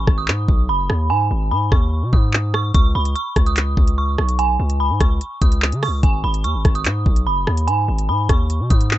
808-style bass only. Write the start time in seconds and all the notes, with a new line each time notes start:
0.07 G#1
0.28 G#2
0.48 B1
0.69 F#1
0.90 D#2
1.10 G#2
1.31 G#1
1.51 G#2
1.72 D#2
2.03 B2
2.13 G#2
2.75 C#2
2.95 C#2
3.36 C#2
3.77 C#2
4.18 B1
4.59 C#2
4.90 G#2
5.01 C#2
5.42 C#2
5.72 C#3
5.88 C#2
6.03 G#1
6.24 G#1
6.44 D#2
6.55 G#1
6.65 G#1
6.86 G#2
7.06 B1
7.27 F#1
7.47 D#2
7.68 G#2
7.88 G#1
8.09 G#2
8.29 D#2
8.60 B2
8.70 G#2